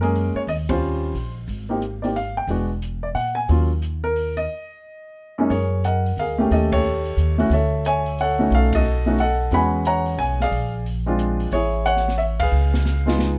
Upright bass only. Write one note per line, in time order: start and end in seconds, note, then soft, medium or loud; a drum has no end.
0.00 0.31 F#2 medium
0.35 muted upright bass stroke soft
0.47 1.11 D#2 medium
1.14 1.46 A#1 medium
1.48 2.45 G#1 medium
2.47 3.11 E1 medium
3.15 3.46 A#2 medium
3.49 4.46 D#2 medium
5.50 6.13 F#2 medium
6.17 6.48 D2 medium
6.51 7.14 D#2 medium
7.17 7.48 D#2 medium
7.50 8.47 D2 medium
8.50 9.47 B1 medium
9.51 10.14 E2 medium
10.18 10.49 B1 medium
10.51 11.48 A#1 medium
11.52 12.48 A1 medium
12.51 13.39 C#2 medium